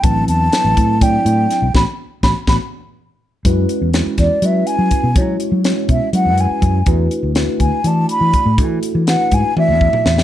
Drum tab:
HH |x-x-x-x-x-x-x-|--------------|x-x-x-x-x-x-x-|x-x-x-x-x-x-x-|
SD |----o-------o-|o---o-o-------|----o-o-------|----o---------|
T1 |--------------|--------------|--------------|--------------|
T2 |--------------|--------------|--------------|--------------|
BD |o-----o-o-----|o---o-o-------|o-----o-----o-|o-----o-----o-|

HH |x-x-x-x-x-x-x-|x-x-x-x-------|
SD |----o---------|----o-------oo|
T1 |--------------|--------o-----|
T2 |--------------|-----------o--|
BD |o-----o-----o-|o-----o---o---|